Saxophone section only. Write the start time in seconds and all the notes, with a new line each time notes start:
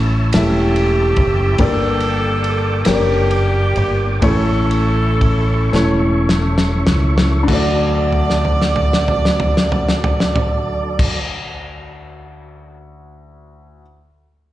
Already playing: C#4 E4
0.34 C#4 E4 G4
1.60 D4 A4
2.88 A#3 D4 G4
4.24 C#4 E4 A4
7.48 D5